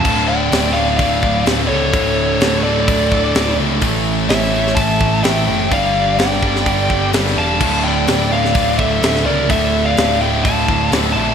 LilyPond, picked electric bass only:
\new Staff \with { instrumentName = "Picked electric bass" } { \clef bass \time 4/4 \key d \minor \tempo 4 = 127 d,,4 d,,4 d,,4 d,,8 cis,8 | d,,4 d,,4 d,,4 d,,8 cis,8 | a,,4 a,,4 a,,4 a,,8 fis,,8 | g,,4 g,,4 g,,4 g,,8 e,,8 |
d,,4 d,,4 d,,4 d,,8 cis,8 | d,,4 d,,4 d,,4 d,,8 bes,,8 | }